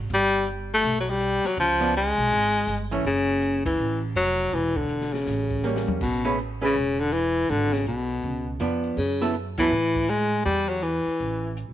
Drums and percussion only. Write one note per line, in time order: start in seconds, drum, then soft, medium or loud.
0.10 kick soft
0.10 open hi-hat soft
0.47 closed hi-hat medium
0.84 kick soft
0.84 open hi-hat soft
1.21 closed hi-hat medium
1.45 snare soft
1.45 open hi-hat soft
1.57 kick soft
1.57 open hi-hat soft
1.81 snare soft
1.94 closed hi-hat medium
2.31 kick soft
2.31 open hi-hat soft
2.68 closed hi-hat medium
2.92 open hi-hat soft
3.05 kick soft
3.05 open hi-hat medium
3.42 closed hi-hat medium
3.66 kick medium
3.66 ride medium
4.16 closed hi-hat medium
4.39 open hi-hat soft
4.52 kick soft
4.52 open hi-hat soft
4.76 kick medium
4.89 closed hi-hat medium
5.01 snare soft
5.14 snare soft
5.27 kick soft
5.27 snare soft
5.27 open hi-hat soft
5.50 kick medium
5.76 snare medium
5.88 mid tom medium
6.01 kick medium
6.01 crash medium
6.38 closed hi-hat soft
6.75 kick soft
6.75 open hi-hat soft
7.13 closed hi-hat medium
7.37 open hi-hat soft
7.50 kick soft
7.50 open hi-hat soft
7.73 snare soft
7.86 closed hi-hat soft
8.10 open hi-hat soft
8.22 kick soft
8.22 open hi-hat soft
8.60 closed hi-hat medium
8.84 open hi-hat soft
8.97 kick soft
8.97 open hi-hat soft
9.21 snare soft
9.34 closed hi-hat medium
9.58 kick medium
9.58 ride medium
9.95 kick medium
10.08 closed hi-hat medium
10.32 open hi-hat soft
10.45 kick soft
10.45 open hi-hat soft
10.82 closed hi-hat medium
11.06 open hi-hat soft
11.20 kick soft
11.20 open hi-hat soft
11.57 closed hi-hat medium